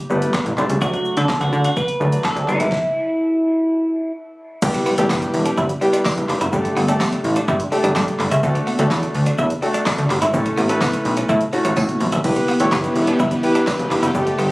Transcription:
0.10 G1 G3 A3 B3, shaker
0.22 closed hi-hat, shaker
0.34 kick, snare, clap, shaker
0.46 A1, closed hi-hat, shaker
0.57 C2 G3 A3 D4, clap, shaker
0.70 C#2, closed hi-hat, shaker
0.81 D2 F#3 A3 D4 F#4, kick, shaker
0.93 F#4, closed hi-hat, shaker
1.05 shaker
1.17 D3 A4, closed hi-hat, shaker
1.29 kick, snare, clap, shaker
1.41 D2 F#4, closed hi-hat, shaker
1.53 D3, shaker
1.64 F#4, closed hi-hat, shaker
1.76 B4, kick, shaker
1.88 closed hi-hat, shaker
2.00 D2 F#3 A3 D4, shaker
2.12 closed hi-hat, shaker
2.24 A4, kick, snare, clap, shaker
2.36 D2, closed hi-hat, shaker
2.48 G1 F#3 A3 B3 E4, clap, shaker
2.60 G#1, closed hi-hat, shaker
2.72 kick, snare
4.62 E1 G3 B3 E4 G4, kick, crash, impact, shaker
4.74 muted clean electric guitar stroke, closed hi-hat, shaker
4.86 B3, open hi-hat, shaker
4.98 E1 G3 A3 B3 E4 G4, closed hi-hat, shaker
5.10 G1 B3, kick, snare, clap, tambourine, shaker
5.22 muted clean electric guitar stroke, closed hi-hat, shaker
5.34 E1, open hi-hat, shaker
5.46 D4, closed hi-hat, shaker
5.57 G1 E4, kick, shaker
5.69 closed hi-hat, shaker
5.81 G3 B3 E4 G4, muted clean electric guitar stroke, open hi-hat, shaker
5.93 D4, closed hi-hat, shaker
6.05 D4, kick, snare, clap, tambourine, shaker
6.17 E1, closed hi-hat, shaker
6.29 F1, muted clean electric guitar stroke, clap, open hi-hat, shaker
6.41 F#1 E4, closed hi-hat, shaker
6.52 G1 A3 D4 G4 A4, kick, shaker
6.65 muted clean electric guitar stroke, closed hi-hat, shaker
6.77 G1 B3, open hi-hat, shaker
6.88 A3 D4 G4 A4, closed hi-hat, shaker
7.00 B3, kick, snare, clap, tambourine, shaker
7.12 muted clean electric guitar stroke, closed hi-hat, shaker
7.24 A1, open hi-hat, shaker
7.36 D4, closed hi-hat, shaker
7.48 G2 E4, kick, shaker
7.60 closed hi-hat, shaker
7.72 A3 D4 G4 A4, muted clean electric guitar stroke, open hi-hat, shaker
7.84 G1 D4, closed hi-hat, shaker
7.95 G2 D4, kick, snare, clap, tambourine, shaker
8.08 closed hi-hat, shaker
8.19 G1, muted clean electric guitar stroke, clap, open hi-hat, shaker
8.31 C#2 E4, closed hi-hat, shaker
8.43 D2 A3 D4 F#4 A4, kick, shaker
8.55 muted clean electric guitar stroke, closed hi-hat, shaker
8.67 B3, open hi-hat, shaker
8.79 D2 A3 D4 F#4 A4, closed hi-hat, shaker
8.91 E2 B3, kick, snare, clap, tambourine, shaker
9.03 muted clean electric guitar stroke, closed hi-hat, shaker
9.15 D2, open hi-hat, shaker
9.26 D4, closed hi-hat, shaker
9.38 E2 E4, kick, shaker
9.50 closed hi-hat, shaker
9.62 A3 D4 F#4 A4, muted clean electric guitar stroke, open hi-hat, shaker
9.74 D4, closed hi-hat, shaker
9.86 D4, kick, snare, clap, tambourine, shaker
9.98 D2, closed hi-hat, shaker
10.10 G1, muted clean electric guitar stroke, clap, open hi-hat, shaker
10.22 G#1 E4, closed hi-hat, shaker
10.33 A1 A3 C#4 E4 A4, kick, shaker
10.46 muted clean electric guitar stroke, closed hi-hat, shaker
10.57 A1 B3, open hi-hat, shaker
10.69 A3 C#4 E4 B4, closed hi-hat, shaker
10.81 B3, kick, snare, clap, tambourine, shaker
10.93 muted clean electric guitar stroke, closed hi-hat, shaker
11.05 B1, open hi-hat, shaker
11.17 C#4, closed hi-hat, shaker
11.29 A2 E4, kick, shaker
11.41 closed hi-hat, shaker
11.53 A3 C#4 E4 F#4, muted clean electric guitar stroke, open hi-hat, shaker
11.65 A1 C#4, closed hi-hat, shaker
11.76 A2 C#4, kick, high tom, tambourine, shaker
11.89 closed hi-hat, mid tom, shaker
12.00 A1, muted clean electric guitar stroke, mid tom, open hi-hat, shaker
12.12 D#1 E4, closed hi-hat, floor tom, shaker
12.24 E1 E3 B3 E4 G4 B4, kick, crash
12.36 muted clean electric guitar stroke, closed hi-hat, shaker
12.48 B3, open hi-hat, shaker
12.60 E1 A3 B3 E4 G4 C#5, closed hi-hat, shaker
12.72 G1 B3, kick, snare, clap, tambourine, shaker
12.84 muted clean electric guitar stroke, closed hi-hat, shaker
12.96 E1, open hi-hat, shaker
13.07 D4, closed hi-hat, shaker
13.19 G1 E4, kick, shaker
13.31 closed hi-hat, shaker
13.43 B3 E4 G4 B4, muted clean electric guitar stroke, open hi-hat, shaker
13.55 D4, closed hi-hat, shaker
13.67 D4, kick, snare, clap, tambourine, shaker
13.79 E1, closed hi-hat, shaker
13.91 F1, muted clean electric guitar stroke, clap, open hi-hat, shaker
14.03 F#1 E4, closed hi-hat, shaker
14.15 G1 D3 A3 D4 G4 A4, kick, shaker
14.27 muted clean electric guitar stroke, closed hi-hat, shaker
14.39 G1 B3, open hi-hat, shaker

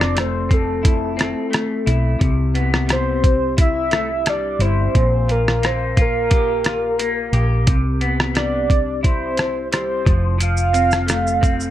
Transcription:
Already playing: F1 F3 C4 D5
0.01 cross-stick
0.15 A3, cross-stick, closed hi-hat
0.20 C5
0.49 C4, kick, closed hi-hat
0.54 A4
0.83 E4, kick, closed hi-hat
1.17 C4, cross-stick, closed hi-hat
1.51 A3, cross-stick, closed hi-hat
1.86 B1 E4, closed hi-hat
2.19 C2 C3, kick, closed hi-hat
2.54 B3, closed hi-hat
2.74 cross-stick
2.87 G3, cross-stick, closed hi-hat
2.92 C5
3.24 kick, closed hi-hat
3.57 E4, kick, closed hi-hat
3.61 E5
3.91 A3, cross-stick, closed hi-hat
4.26 G3 D5, cross-stick, closed hi-hat
4.59 G1 E4 C5, closed hi-hat
4.95 A#1 A#2, kick, closed hi-hat
5.28 F4 A#4, closed hi-hat
5.48 cross-stick
5.62 A#3 C5, cross-stick, closed hi-hat
5.97 F4, kick, closed hi-hat
6.01 A#4
6.30 G4, kick, closed hi-hat
6.64 F4, cross-stick, closed hi-hat
6.99 A#3, closed hi-hat
7.33 A#1 G4, closed hi-hat
7.67 C2 C3, kick, closed hi-hat
8.01 B3, closed hi-hat
8.20 cross-stick
8.34 G3 D5, cross-stick, closed hi-hat
8.70 kick, closed hi-hat
9.03 E4 C5, kick, closed hi-hat
9.37 cross-stick, closed hi-hat
9.72 G3 C5, cross-stick, closed hi-hat
10.05 F1 F3, kick, closed hi-hat
10.38 F3, closed hi-hat, shaker
10.43 F5
10.57 shaker
10.73 C4, closed hi-hat, shaker
10.91 cross-stick, shaker
11.06 A3, cross-stick, closed hi-hat, shaker
11.27 shaker
11.41 C4, kick, closed hi-hat, shaker
11.60 shaker

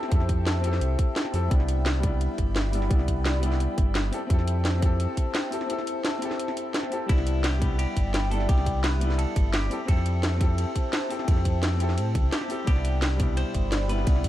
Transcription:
Already playing: C4 E4 G4 A4 C5 E5 G5 A5
0.03 snare
0.08 F2 C4 E4, kick, closed hi-hat
0.13 G4 A4
0.20 snare
0.29 kick, closed hi-hat
0.47 snare, closed hi-hat
0.61 C4 E4, closed hi-hat
0.65 G4 A4
0.73 snare
0.81 C2, closed hi-hat
0.99 kick, closed hi-hat
1.16 snare, closed hi-hat
1.25 snare
1.32 F2 C4 E4 G4 A4, open hi-hat
1.48 C2 G3 B3 D5 B5, kick, closed hi-hat
1.52 D4 E4
1.60 snare
1.68 closed hi-hat
1.86 snare, closed hi-hat
2.00 G3 B3, kick, closed hi-hat
2.05 D4 E4
2.21 closed hi-hat
2.38 G1, kick, closed hi-hat
2.56 snare, closed hi-hat
2.71 G3 B3 D4 E4, open hi-hat
2.82 snare
2.87 C2 G3 B3, kick, closed hi-hat
2.92 D4 E4
2.99 snare
3.08 kick, closed hi-hat
3.26 snare, closed hi-hat
3.40 G3 B3, closed hi-hat
3.44 D4 E4
3.52 snare
3.60 closed hi-hat
3.78 G1, kick, closed hi-hat
3.95 snare, closed hi-hat
4.11 C4 E4 G4 A4 C5 E5 A5, open hi-hat
4.27 F2 C4 E4, kick, closed hi-hat
4.31 G4 A4
4.39 snare
4.48 closed hi-hat
4.65 snare, closed hi-hat
4.79 C4 E4, kick, closed hi-hat
4.83 G4 A4
5.00 closed hi-hat
5.17 kick, closed hi-hat
5.35 snare, closed hi-hat
5.50 C4 E4 G4 A4, open hi-hat
5.61 snare
5.66 C4 E4, closed hi-hat
5.71 G4 A4
5.78 snare
5.87 closed hi-hat
6.05 snare, closed hi-hat
6.19 C4 E4, closed hi-hat
6.23 G4 A4
6.31 snare
6.39 closed hi-hat
6.48 snare
6.57 closed hi-hat
6.74 snare, closed hi-hat
6.83 snare
6.90 C4 E4 G4 A4, open hi-hat
7.06 C2 G3 B3 E4 D5 G5 B5, kick, closed hi-hat, ride bell
7.10 D4 E4
7.18 snare
7.27 closed hi-hat
7.44 G4, snare, closed hi-hat, ride bell
7.58 G3 B3, kick, closed hi-hat
7.63 D4 E4
7.79 G4, closed hi-hat, ride bell
7.96 G1, kick, closed hi-hat
8.14 G4, snare, closed hi-hat, ride bell
8.30 G3 B3 D4 E4 A4, open hi-hat
8.40 snare
8.45 C2 G3 B3 G4, kick, closed hi-hat, ride bell
8.50 D4 E4
8.58 snare
8.66 kick, closed hi-hat
8.83 B4, snare, closed hi-hat, ride bell
8.98 G3 B3, closed hi-hat
9.02 D4 E4
9.10 snare
9.18 A4, closed hi-hat, ride bell
9.36 G1, kick, closed hi-hat
9.53 G4, snare, closed hi-hat, ride bell
9.69 C4 E4 G4 A4 C5 G5 A5, open hi-hat
9.85 F2 C4 E4 A4, kick, closed hi-hat, ride bell
9.90 G4 A4
9.97 snare
10.06 closed hi-hat
10.23 snare, closed hi-hat, ride bell
10.38 C4 E4, kick, closed hi-hat
10.42 G4 A4
10.58 closed hi-hat, ride bell
10.76 kick, closed hi-hat
10.93 snare, closed hi-hat, ride bell
11.09 C4 E4 G4 A4, open hi-hat
11.19 snare
11.24 F2 C4 E4, kick, closed hi-hat, ride bell
11.29 G4 A4
11.37 snare
11.45 kick, closed hi-hat
11.63 snare, closed hi-hat, ride bell
11.77 C4 E4, closed hi-hat
11.81 G4 A4
11.89 snare
11.98 A2, closed hi-hat, ride bell
12.15 C2, kick, closed hi-hat
12.33 G4, snare, closed hi-hat, ride bell
12.41 snare
12.48 C4 E4 G4 A4, open hi-hat
12.64 C2 G3 B3 G4 D5 E5 B5, kick, closed hi-hat, ride bell
12.69 D4 E4
12.76 snare
12.85 closed hi-hat
13.02 snare, closed hi-hat, ride bell
13.16 B2 G3, kick, closed hi-hat
13.21 D4 E4
13.37 C5, closed hi-hat, ride bell
13.54 G1, kick, closed hi-hat
13.72 snare, closed hi-hat, ride bell
13.88 G3 B3 D4 E4 B4, open hi-hat
13.98 snare
14.04 C2 G3 B3, kick, closed hi-hat, ride bell
14.08 D4 E4
14.16 snare
14.24 kick, closed hi-hat

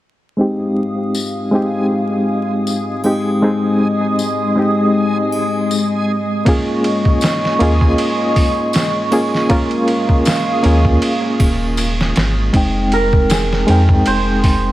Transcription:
0.37 G#3 C4 D#4 G4 G#4 F5 D#6
1.15 tambourine
1.51 G#3 C4 D#4 G4
2.67 tambourine
3.04 G#3 C4 D#4 G4, triangle
3.42 G#3 C4 D#4 G#4 D#5
4.19 tambourine
4.56 G#3 C4 D#4 G4
5.32 triangle
5.71 tambourine
6.45 A#3 C#4 F4 G#4 D#5 C#6, kick, ride
6.84 ride
7.05 kick
7.21 snare, ride, tambourine
7.45 snare
7.59 D#2 A#3 C#4 F4 G#4, ride
7.81 kick
7.98 ride
8.36 kick, open hi-hat
8.73 snare, ride, tambourine
9.11 A#3 C#4 F4 G#4, ride, triangle
9.35 snare
9.50 A#3 C#4 F4 A#4 F5, kick, ride
9.71 ride
9.88 ride
10.09 kick
10.25 snare, ride, tambourine
10.63 D#2 A#3 C#4 F4 G#4, ride
10.85 kick
11.02 ride
11.40 D#1, kick, ride, triangle
11.77 ride, tambourine
12.01 snare
12.16 G#1, snare, ride
12.53 F1 G#3 C4 D#4 G5, kick, ride
12.92 A#4, ride
13.13 kick
13.30 G#4, snare, ride, tambourine
13.53 snare
13.67 F2 G#3 C4 D#4 G5, ride
13.89 kick
14.06 F1 C5, ride
14.44 kick, open hi-hat

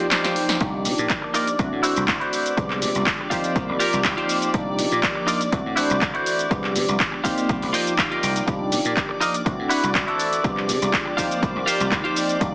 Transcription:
Already playing: F3 A#3 C4 D#4 G4 D5 D6
0.11 C5, snare, clap, closed hi-hat
0.24 F4 G4 C5, snare, closed hi-hat
0.36 open hi-hat
0.49 snare, closed hi-hat
0.60 C2 F3 A#3 D4 D#4 G4 D5 D6, kick, closed hi-hat, shaker
0.85 C3, open hi-hat, shaker
0.98 A#2, closed hi-hat, shaker
1.10 kick, clap, closed hi-hat, shaker
1.22 muted clean electric guitar stroke
1.34 D#4 F4 A#4 D5, open hi-hat, shaker
1.47 closed hi-hat, shaker
1.58 C2 E3 A3 C4 D4 F#4, muted clean electric guitar stroke, kick, closed hi-hat, shaker
1.72 A2
1.83 E4 F#4 C5, open hi-hat, shaker
1.96 C2, closed hi-hat, shaker
2.08 C2, kick, clap, closed hi-hat, shaker
2.20 E4 F#4 C5, closed hi-hat
2.33 open hi-hat, shaker
2.46 closed hi-hat, shaker
2.57 C2 F3 G#3 B3 D4 G4, kick, closed hi-hat, shaker
2.70 clap
2.82 C3, open hi-hat, shaker
2.95 C2, closed hi-hat, shaker
3.07 kick, clap, closed hi-hat, shaker
3.19 muted clean electric guitar stroke
3.30 F3 A#3 C4 D#4 F4 G4 C5, kick, open hi-hat, shaker
3.44 closed hi-hat, shaker
3.56 C2, kick, closed hi-hat, shaker
3.69 C2
3.79 F4 G4 A#4, open hi-hat, shaker
3.93 C2, closed hi-hat, shaker
4.05 C2, kick, clap, closed hi-hat, shaker
4.17 F4 G4 C5, closed hi-hat
4.29 open hi-hat, shaker
4.42 closed hi-hat, shaker
4.53 C2 F3 A#3 D4 D#4 G4, kick, closed hi-hat, shaker
4.79 C3, open hi-hat, shaker
4.92 A#2, closed hi-hat, shaker
5.03 kick, clap, closed hi-hat, shaker
5.15 muted clean electric guitar stroke
5.27 D#4 F4 A#4 D5, open hi-hat, shaker
5.41 closed hi-hat, shaker
5.52 C2 E3 A3 C4 D4 F#4, muted clean electric guitar stroke, kick, closed hi-hat, shaker
5.66 A2
5.76 E4 F#4 C5, open hi-hat, shaker
5.90 C2, closed hi-hat, shaker
6.01 C2, kick, clap, closed hi-hat, shaker
6.14 E4 F#4 C5, closed hi-hat
6.26 open hi-hat, shaker
6.39 closed hi-hat, shaker
6.50 C2 F3 G#3 B3 D4 G4, kick, closed hi-hat, shaker
6.64 clap
6.75 C3, open hi-hat, shaker
6.88 C2, closed hi-hat, shaker
7.00 kick, clap, closed hi-hat, shaker
7.12 muted clean electric guitar stroke
7.23 F3 A#3 C4 D#4 F4 G4 C5, kick, open hi-hat, shaker
7.38 closed hi-hat, shaker
7.49 C2, kick, closed hi-hat, shaker
7.62 C2, open hi-hat
7.73 F4 G4 C5 D#5, open hi-hat, shaker
7.87 closed hi-hat, shaker
7.99 F5, kick, clap, closed hi-hat, shaker
8.10 F4 G4 A#4, closed hi-hat
8.23 C2 G5, open hi-hat, shaker
8.36 closed hi-hat, shaker
8.46 C2 F3 A#3 D4 D#4 G4 D5 D6, kick, closed hi-hat, shaker
8.72 C3, open hi-hat, shaker
8.85 A#2, closed hi-hat, shaker
8.97 kick, clap, closed hi-hat, shaker
9.09 muted clean electric guitar stroke
9.20 D#4 F4 A#4 D#5, open hi-hat, shaker
9.34 closed hi-hat, shaker
9.45 C2 E3 A3 C4 D4 F#4, muted clean electric guitar stroke, kick, closed hi-hat, shaker
9.59 A2
9.69 E4 F#4 B4, open hi-hat, shaker
9.84 C2, closed hi-hat, shaker
9.95 C2, kick, clap, closed hi-hat, shaker
10.07 E4 F#4 A4, closed hi-hat
10.20 open hi-hat, shaker
10.33 closed hi-hat, shaker
10.43 C2 F3 G#3 B3 D4 G4, kick, closed hi-hat, shaker
10.57 clap
10.69 C3, open hi-hat, shaker
10.82 C2, closed hi-hat, shaker
10.93 kick, clap, closed hi-hat, shaker
11.06 muted clean electric guitar stroke
11.17 F3 A#3 C4 D#4 F4 G4 C5, kick, open hi-hat, shaker
11.31 closed hi-hat, shaker
11.43 C2, kick, closed hi-hat, shaker
11.56 C2
11.66 F4 G4 C5, open hi-hat, shaker
11.80 C2, closed hi-hat, shaker
11.92 C2, kick, clap, closed hi-hat, shaker
12.04 F4 G4 C5, closed hi-hat
12.16 open hi-hat, shaker
12.29 closed hi-hat, shaker
12.40 C2 F3 A#3 D4 D#4 G4, kick, closed hi-hat, shaker

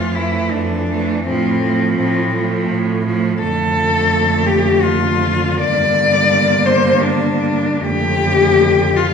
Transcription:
Already playing: F2 E3 A3 F4
0.15 E3 A3 E4
0.53 F2 D4
0.90 E3 A3
1.24 A2 F3 A3 C4
1.63 F3 A3
1.97 A2 C4
2.35 F3 A3
2.69 A2
3.05 F3 A3
3.40 F2 D3 A3 A4
4.47 G4
4.82 F4
5.59 G2 A#3 D5
6.66 C5
7.02 D4
7.82 F2 D3 A3 G4
8.96 F4

